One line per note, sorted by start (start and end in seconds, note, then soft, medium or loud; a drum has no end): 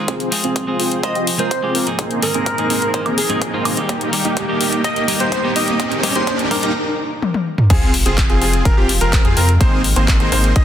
0.00 0.14 G#3 medium
0.00 0.14 C4 soft
0.00 0.14 F4 medium
0.00 0.14 G#4 medium
0.08 1.97 F3 medium
0.08 3.85 C4 medium
0.08 0.29 C4 medium
0.08 0.29 F4 medium
0.08 3.85 G#4 medium
0.08 0.29 G#4 loud
0.08 1.97 C5 medium
0.08 kick loud
0.08 closed hi-hat medium
0.08 riser medium
0.20 closed hi-hat soft
0.31 0.65 G#3 medium
0.31 0.65 C4 medium
0.31 0.65 F4 medium
0.31 0.65 G#4 medium
0.31 open hi-hat loud
0.44 0.65 C4 medium
0.44 0.65 F4 medium
0.44 0.65 G#4 medium
0.44 closed hi-hat medium
0.56 kick loud
0.56 closed hi-hat medium
0.67 1.00 G#3 medium
0.67 1.01 C4 medium
0.67 0.77 C4 medium
0.67 0.77 F4 medium
0.67 1.01 F4 medium
0.67 0.77 G#4 medium
0.67 1.01 G#4 medium
0.80 1.01 C4 medium
0.80 1.01 F4 medium
0.80 1.01 G#4 loud
0.80 open hi-hat medium
0.92 closed hi-hat soft
1.03 1.14 G#3 medium
1.03 1.13 C4 loud
1.03 1.14 C4 medium
1.03 1.13 F4 medium
1.03 1.15 F4 medium
1.03 1.13 A#4 loud
1.03 1.15 C5 medium
1.03 1.11 D#5 medium
1.03 kick loud
1.03 closed hi-hat medium
1.15 1.28 C4 medium
1.15 1.28 F4 medium
1.15 1.28 G4 loud
1.15 1.23 D#5 medium
1.15 closed hi-hat soft
1.27 open hi-hat loud
1.38 1.50 G#3 medium
1.38 1.60 C4 medium
1.38 1.50 C4 medium
1.38 1.60 F4 medium
1.38 1.50 F4 medium
1.38 1.51 G#4 medium
1.38 1.60 A#4 medium
1.38 1.47 C5 medium
1.38 closed hi-hat soft
1.51 1.59 C5 medium
1.51 kick loud
1.51 closed hi-hat medium
1.62 1.84 G#3 medium
1.62 1.84 C4 medium
1.62 1.73 C4 medium
1.62 1.73 F4 medium
1.62 1.84 F4 medium
1.62 1.84 G4 medium
1.62 1.73 G#4 medium
1.75 1.88 C4 medium
1.75 1.88 F4 medium
1.75 1.88 A#4 loud
1.75 open hi-hat medium
1.86 2.04 G#2 medium
1.86 2.04 A#3 medium
1.86 2.05 C4 medium
1.86 2.05 D#4 medium
1.86 2.05 G#4 medium
1.86 closed hi-hat medium
1.99 6.71 D#3 medium
1.99 2.20 A#3 medium
1.99 2.20 C4 medium
1.99 2.20 D#4 medium
1.99 2.20 G#4 medium
1.99 6.71 A#4 medium
1.99 2.20 C5 loud
1.99 kick loud
1.99 closed hi-hat medium
2.11 closed hi-hat soft
2.22 2.55 G#2 medium
2.22 2.55 A#3 medium
2.22 2.55 C4 medium
2.22 2.56 D#4 medium
2.22 2.56 G#4 medium
2.22 2.89 A#4 medium
2.22 open hi-hat loud
2.34 2.55 A#3 medium
2.34 2.55 C4 medium
2.34 2.55 D#4 medium
2.34 2.55 G#4 medium
2.34 2.55 C5 medium
2.34 closed hi-hat medium
2.46 kick loud
2.46 closed hi-hat medium
2.58 2.91 G#2 medium
2.58 2.67 A#3 medium
2.58 2.91 A#3 medium
2.58 2.67 C4 medium
2.58 2.91 C4 medium
2.58 2.67 D#4 medium
2.58 2.91 D#4 medium
2.58 2.67 G#4 medium
2.58 2.91 G#4 medium
2.58 2.67 C5 medium
2.58 closed hi-hat soft
2.70 2.91 A#3 medium
2.70 2.91 C4 medium
2.70 2.91 D#4 medium
2.70 2.91 G#4 medium
2.70 2.91 C5 loud
2.70 open hi-hat medium
2.82 closed hi-hat medium
2.93 3.05 G#2 medium
2.93 3.03 A#3 loud
2.93 3.05 A#3 medium
2.93 3.05 C4 medium
2.93 3.03 C4 medium
2.93 3.03 D#4 medium
2.93 3.05 D#4 medium
2.93 3.03 G#4 medium
2.93 3.05 C5 medium
2.93 3.03 D#5 loud
2.93 kick loud
2.93 closed hi-hat medium
3.06 3.19 A#3 medium
3.06 3.19 C4 medium
3.06 3.19 D#4 medium
3.06 3.19 G#4 medium
3.06 3.19 A#4 loud
3.06 closed hi-hat soft
3.06 high woodblock medium
3.18 3.25 G#4 medium
3.18 open hi-hat loud
3.29 3.40 G#2 medium
3.29 3.51 A#3 medium
3.29 3.41 A#3 medium
3.29 3.41 C4 medium
3.29 3.51 C4 medium
3.29 3.51 D#4 medium
3.29 3.41 D#4 medium
3.29 3.51 G#4 medium
3.29 3.37 G#4 medium
3.29 3.41 G#4 medium
3.29 3.51 D#5 loud
3.29 closed hi-hat soft
3.42 kick loud
3.42 closed hi-hat medium
3.53 3.74 G#2 medium
3.53 3.64 A#3 medium
3.53 3.74 A#3 medium
3.53 3.64 C4 medium
3.53 3.74 C4 medium
3.53 3.64 D#4 medium
3.53 3.75 D#4 medium
3.53 3.75 F4 medium
3.53 3.64 G#4 medium
3.53 3.64 C5 medium
3.65 3.78 A#3 medium
3.65 3.78 C4 medium
3.65 3.78 D#4 medium
3.65 3.78 G#4 medium
3.65 3.78 D#5 loud
3.65 open hi-hat loud
3.65 high woodblock medium
3.77 3.89 G3 medium
3.77 3.89 A#3 medium
3.77 3.89 D#4 medium
3.77 3.89 G4 medium
3.77 closed hi-hat medium
3.89 4.10 A#3 medium
3.89 5.78 A#3 medium
3.89 4.10 D#4 medium
3.89 4.10 G4 loud
3.89 5.78 G4 medium
3.89 kick loud
3.89 closed hi-hat medium
4.01 closed hi-hat soft
4.12 4.46 G3 medium
4.12 4.46 A#3 medium
4.12 4.46 D#4 medium
4.12 4.46 G4 medium
4.12 open hi-hat loud
4.25 4.46 A#3 medium
4.25 4.46 D#4 medium
4.25 4.46 G4 medium
4.25 closed hi-hat medium
4.37 kick loud
4.37 closed hi-hat medium
4.48 4.81 G3 medium
4.48 4.81 A#3 medium
4.48 4.58 A#3 medium
4.48 4.58 D#4 medium
4.48 4.82 D#4 medium
4.48 4.58 G4 medium
4.48 4.82 G4 medium
4.61 4.82 A#3 medium
4.61 4.82 D#4 medium
4.61 4.82 G4 medium
4.61 open hi-hat loud
4.72 closed hi-hat medium
4.84 5.05 A#3 loud
4.84 5.05 D#4 medium
4.84 5.05 G4 loud
4.84 4.92 D#5 loud
4.84 kick loud
4.84 closed hi-hat medium
4.96 5.04 D#5 medium
4.96 closed hi-hat soft
5.07 5.41 G3 medium
5.07 5.41 A#3 medium
5.07 5.41 D#4 medium
5.07 5.41 G4 medium
5.07 open hi-hat loud
5.20 5.41 A#3 medium
5.20 5.41 D#4 medium
5.20 5.41 G4 medium
5.20 5.28 C5 medium
5.20 closed hi-hat medium
5.32 5.40 C5 medium
5.32 kick loud
5.32 closed hi-hat medium
5.43 5.76 G3 medium
5.43 5.77 A#3 medium
5.43 5.53 A#3 medium
5.43 5.53 D#4 medium
5.43 5.77 D#4 medium
5.43 5.53 G4 medium
5.43 5.77 G4 medium
5.56 5.77 A#3 medium
5.56 5.77 D#4 medium
5.56 5.77 G4 medium
5.56 5.63 D#5 medium
5.56 open hi-hat loud
5.68 5.75 D#5 medium
5.68 closed hi-hat medium
5.80 6.01 A#3 loud
5.80 6.74 C4 medium
5.80 6.01 D#4 medium
5.80 6.01 G4 loud
5.80 6.74 G#4 medium
5.80 kick loud
5.80 closed hi-hat medium
5.92 closed hi-hat soft
6.03 6.25 G3 medium
6.03 6.25 A#3 medium
6.03 6.25 D#4 medium
6.03 6.26 G4 medium
6.03 kick loud
6.03 open hi-hat loud
6.15 6.25 A#3 medium
6.15 6.25 D#4 medium
6.15 6.25 G4 medium
6.15 6.29 C5 medium
6.15 closed hi-hat medium
6.27 6.48 A#3 loud
6.27 6.48 D#4 medium
6.27 6.48 G4 loud
6.27 kick loud
6.27 closed hi-hat medium
6.39 closed hi-hat soft
6.50 6.73 G3 medium
6.50 6.73 A#3 medium
6.50 6.73 D#4 medium
6.50 6.73 G4 medium
6.50 6.59 A#4 medium
6.50 kick loud
6.50 open hi-hat loud
6.63 6.73 A#3 medium
6.63 6.73 D#4 medium
6.63 6.73 G4 medium
6.63 6.71 A#4 medium
6.63 closed hi-hat medium
7.22 high tom medium
7.34 high tom medium
7.58 mid tom medium
7.70 8.03 F1 loud
7.70 10.64 C3 medium
7.70 9.59 F3 medium
7.70 10.64 G#3 medium
7.70 7.91 C4 loud
7.70 9.59 F4 medium
7.70 7.91 F4 medium
7.70 7.91 G#4 loud
7.70 kick loud
7.70 closed hi-hat medium
7.70 crash loud
7.70 sub drop medium
7.94 open hi-hat loud
8.06 8.27 F1 loud
8.06 8.27 C4 medium
8.06 8.27 F4 medium
8.06 8.27 G#4 medium
8.06 closed hi-hat medium
8.18 kick loud
8.18 clap loud
8.18 closed hi-hat medium
8.30 8.39 F1 loud
8.30 8.39 C4 medium
8.30 8.39 F4 medium
8.30 8.39 G#4 medium
8.30 closed hi-hat soft
8.42 8.63 F1 loud
8.42 8.63 C4 medium
8.42 8.63 F4 medium
8.42 8.62 G#4 medium
8.42 8.63 G#4 loud
8.42 open hi-hat medium
8.53 closed hi-hat medium
8.65 8.75 F1 loud
8.65 8.74 C4 loud
8.65 8.74 F4 medium
8.65 8.74 A#4 loud
8.65 kick loud
8.65 closed hi-hat medium
8.77 8.99 F1 loud
8.77 8.90 C4 medium
8.77 8.90 F4 medium
8.77 8.90 G4 loud
8.89 open hi-hat loud
9.01 9.23 F1 medium
9.01 9.22 C4 medium
9.01 9.22 F4 medium
9.01 9.22 A#4 loud
9.01 closed hi-hat medium
9.13 kick loud
9.13 clap loud
9.13 closed hi-hat medium
9.25 9.34 F2 loud
9.25 9.35 C4 medium
9.25 9.35 F4 medium
9.25 9.35 G#4 medium
9.25 closed hi-hat soft
9.37 9.58 F2 loud
9.37 9.50 C4 loud
9.37 9.50 F4 medium
9.37 9.50 A#4 loud
9.37 open hi-hat loud
9.49 closed hi-hat medium
9.61 9.94 G#1 loud
9.61 10.64 A#3 medium
9.61 9.82 A#3 loud
9.61 9.82 C4 medium
9.61 10.64 D#4 medium
9.61 9.82 D#4 medium
9.61 9.82 G#4 medium
9.61 9.82 C5 loud
9.61 kick loud
9.61 closed hi-hat medium
9.84 open hi-hat loud
9.96 10.18 G#1 loud
9.96 10.17 A#3 medium
9.96 10.17 C4 medium
9.96 10.17 D#4 medium
9.96 10.17 G#4 medium
9.96 10.17 C5 medium
9.96 closed hi-hat medium
10.08 kick loud
10.08 clap loud
10.08 closed hi-hat medium
10.20 10.30 G#1 loud
10.20 10.29 A#3 medium
10.20 10.29 C4 medium
10.20 10.29 D#4 medium
10.20 10.29 G#4 medium
10.20 10.29 C5 medium
10.20 closed hi-hat soft
10.32 10.53 G#1 loud
10.32 10.53 A#3 medium
10.32 10.53 C4 medium
10.32 10.53 D#4 medium
10.32 10.53 G#4 medium
10.32 10.53 C5 loud
10.32 open hi-hat loud
10.44 closed hi-hat medium
10.56 10.64 G#1 loud
10.56 10.64 A#3 loud
10.56 10.64 C4 medium
10.56 10.64 D#4 medium
10.56 10.64 G#4 medium
10.56 10.64 D#5 loud
10.56 kick loud
10.56 closed hi-hat medium